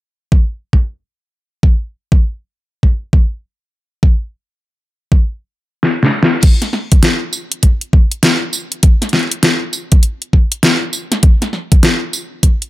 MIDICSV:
0, 0, Header, 1, 2, 480
1, 0, Start_track
1, 0, Tempo, 600000
1, 1306, Time_signature, 4, 2, 24, 8
1, 10158, End_track
2, 0, Start_track
2, 0, Title_t, "Drums"
2, 256, Note_on_c, 9, 36, 92
2, 336, Note_off_c, 9, 36, 0
2, 585, Note_on_c, 9, 36, 53
2, 665, Note_off_c, 9, 36, 0
2, 1305, Note_on_c, 9, 36, 104
2, 1385, Note_off_c, 9, 36, 0
2, 1695, Note_on_c, 9, 36, 93
2, 1775, Note_off_c, 9, 36, 0
2, 2265, Note_on_c, 9, 36, 55
2, 2345, Note_off_c, 9, 36, 0
2, 2504, Note_on_c, 9, 36, 95
2, 2584, Note_off_c, 9, 36, 0
2, 3223, Note_on_c, 9, 36, 107
2, 3303, Note_off_c, 9, 36, 0
2, 4094, Note_on_c, 9, 36, 86
2, 4174, Note_off_c, 9, 36, 0
2, 4663, Note_on_c, 9, 38, 62
2, 4743, Note_off_c, 9, 38, 0
2, 4822, Note_on_c, 9, 38, 74
2, 4902, Note_off_c, 9, 38, 0
2, 4981, Note_on_c, 9, 38, 95
2, 5061, Note_off_c, 9, 38, 0
2, 5142, Note_on_c, 9, 42, 70
2, 5142, Note_on_c, 9, 49, 98
2, 5146, Note_on_c, 9, 36, 120
2, 5222, Note_off_c, 9, 42, 0
2, 5222, Note_off_c, 9, 49, 0
2, 5226, Note_off_c, 9, 36, 0
2, 5294, Note_on_c, 9, 40, 42
2, 5294, Note_on_c, 9, 42, 38
2, 5374, Note_off_c, 9, 40, 0
2, 5374, Note_off_c, 9, 42, 0
2, 5384, Note_on_c, 9, 40, 38
2, 5464, Note_off_c, 9, 40, 0
2, 5533, Note_on_c, 9, 42, 55
2, 5535, Note_on_c, 9, 36, 112
2, 5613, Note_off_c, 9, 42, 0
2, 5615, Note_off_c, 9, 36, 0
2, 5621, Note_on_c, 9, 38, 116
2, 5621, Note_on_c, 9, 42, 68
2, 5701, Note_off_c, 9, 38, 0
2, 5701, Note_off_c, 9, 42, 0
2, 5862, Note_on_c, 9, 54, 63
2, 5942, Note_off_c, 9, 54, 0
2, 6012, Note_on_c, 9, 42, 56
2, 6092, Note_off_c, 9, 42, 0
2, 6102, Note_on_c, 9, 42, 71
2, 6106, Note_on_c, 9, 36, 62
2, 6182, Note_off_c, 9, 42, 0
2, 6186, Note_off_c, 9, 36, 0
2, 6251, Note_on_c, 9, 42, 39
2, 6331, Note_off_c, 9, 42, 0
2, 6345, Note_on_c, 9, 36, 105
2, 6425, Note_off_c, 9, 36, 0
2, 6492, Note_on_c, 9, 42, 55
2, 6572, Note_off_c, 9, 42, 0
2, 6582, Note_on_c, 9, 38, 116
2, 6582, Note_on_c, 9, 42, 70
2, 6662, Note_off_c, 9, 38, 0
2, 6662, Note_off_c, 9, 42, 0
2, 6823, Note_on_c, 9, 54, 64
2, 6903, Note_off_c, 9, 54, 0
2, 6974, Note_on_c, 9, 42, 56
2, 7054, Note_off_c, 9, 42, 0
2, 7063, Note_on_c, 9, 42, 67
2, 7066, Note_on_c, 9, 36, 126
2, 7143, Note_off_c, 9, 42, 0
2, 7146, Note_off_c, 9, 36, 0
2, 7215, Note_on_c, 9, 40, 41
2, 7215, Note_on_c, 9, 42, 39
2, 7222, Note_off_c, 9, 42, 0
2, 7222, Note_on_c, 9, 42, 30
2, 7273, Note_off_c, 9, 42, 0
2, 7273, Note_on_c, 9, 42, 25
2, 7295, Note_off_c, 9, 40, 0
2, 7304, Note_off_c, 9, 42, 0
2, 7304, Note_on_c, 9, 38, 60
2, 7304, Note_on_c, 9, 40, 35
2, 7304, Note_on_c, 9, 42, 19
2, 7355, Note_off_c, 9, 42, 0
2, 7355, Note_on_c, 9, 42, 16
2, 7382, Note_off_c, 9, 42, 0
2, 7382, Note_on_c, 9, 42, 13
2, 7384, Note_off_c, 9, 38, 0
2, 7384, Note_off_c, 9, 40, 0
2, 7452, Note_off_c, 9, 42, 0
2, 7452, Note_on_c, 9, 42, 56
2, 7532, Note_off_c, 9, 42, 0
2, 7542, Note_on_c, 9, 38, 126
2, 7542, Note_on_c, 9, 42, 69
2, 7622, Note_off_c, 9, 38, 0
2, 7622, Note_off_c, 9, 42, 0
2, 7783, Note_on_c, 9, 54, 61
2, 7863, Note_off_c, 9, 54, 0
2, 7933, Note_on_c, 9, 42, 54
2, 7936, Note_on_c, 9, 36, 103
2, 8013, Note_off_c, 9, 42, 0
2, 8016, Note_off_c, 9, 36, 0
2, 8022, Note_on_c, 9, 42, 70
2, 8102, Note_off_c, 9, 42, 0
2, 8174, Note_on_c, 9, 42, 39
2, 8254, Note_off_c, 9, 42, 0
2, 8266, Note_on_c, 9, 36, 65
2, 8346, Note_off_c, 9, 36, 0
2, 8413, Note_on_c, 9, 42, 55
2, 8493, Note_off_c, 9, 42, 0
2, 8503, Note_on_c, 9, 38, 121
2, 8503, Note_on_c, 9, 42, 69
2, 8583, Note_off_c, 9, 38, 0
2, 8583, Note_off_c, 9, 42, 0
2, 8743, Note_on_c, 9, 54, 61
2, 8823, Note_off_c, 9, 54, 0
2, 8893, Note_on_c, 9, 40, 56
2, 8893, Note_on_c, 9, 42, 56
2, 8973, Note_off_c, 9, 40, 0
2, 8973, Note_off_c, 9, 42, 0
2, 8983, Note_on_c, 9, 42, 67
2, 8985, Note_on_c, 9, 36, 125
2, 9063, Note_off_c, 9, 42, 0
2, 9065, Note_off_c, 9, 36, 0
2, 9135, Note_on_c, 9, 40, 39
2, 9135, Note_on_c, 9, 42, 37
2, 9215, Note_off_c, 9, 40, 0
2, 9215, Note_off_c, 9, 42, 0
2, 9224, Note_on_c, 9, 40, 36
2, 9304, Note_off_c, 9, 40, 0
2, 9374, Note_on_c, 9, 42, 58
2, 9375, Note_on_c, 9, 36, 115
2, 9454, Note_off_c, 9, 42, 0
2, 9455, Note_off_c, 9, 36, 0
2, 9464, Note_on_c, 9, 38, 124
2, 9464, Note_on_c, 9, 42, 64
2, 9544, Note_off_c, 9, 38, 0
2, 9544, Note_off_c, 9, 42, 0
2, 9705, Note_on_c, 9, 54, 60
2, 9785, Note_off_c, 9, 54, 0
2, 9944, Note_on_c, 9, 36, 67
2, 9944, Note_on_c, 9, 42, 66
2, 10024, Note_off_c, 9, 36, 0
2, 10024, Note_off_c, 9, 42, 0
2, 10095, Note_on_c, 9, 42, 39
2, 10158, Note_off_c, 9, 42, 0
2, 10158, End_track
0, 0, End_of_file